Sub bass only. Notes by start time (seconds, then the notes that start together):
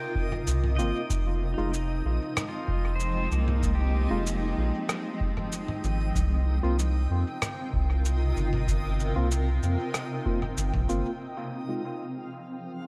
0.47 C2
0.78 G1
1.10 F1
1.58 F1
2.05 A#1
2.68 F1
3.31 C2
4.10 F1
4.57 A#1
5.84 G#1
6.15 C2
6.63 C2
7.10 F2
7.73 C2
8.36 G1
9.16 C2
9.63 F2
10.57 G1
10.74 A#1
10.89 G1